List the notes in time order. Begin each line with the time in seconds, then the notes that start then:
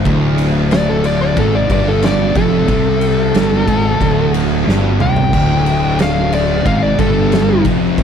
0.05 D1 D2, kick, ride
0.38 ride
0.71 D5, snare, ride
0.89 A4
1.04 D5, ride
1.22 D5
1.37 G#1 G#2 A4, kick, ride
1.55 D5
1.70 G1 G2 D5, kick, ride
1.88 A4
2.02 D5, snare, ride
2.35 F1 F2 A4, kick, ride
2.68 C2 C3, kick, ride
3.01 ride
3.34 G1 G2, snare, ride
3.67 G#1 G#2, kick, ride
4.01 D1 D2, kick, ride
4.34 ride
4.66 G1 G2, snare
4.99 C2 C3 G5, mid tom
5.16 floor tom
5.33 D1 D2, kick, crash
5.66 ride
5.99 F5, snare, ride
6.33 D5, ride
6.65 G#1 G#2 F5, kick, ride
6.83 D5
6.98 G1 G2 A4, kick, ride
7.32 snare, ride
7.65 F1 F2, kick, ride
7.98 kick, ride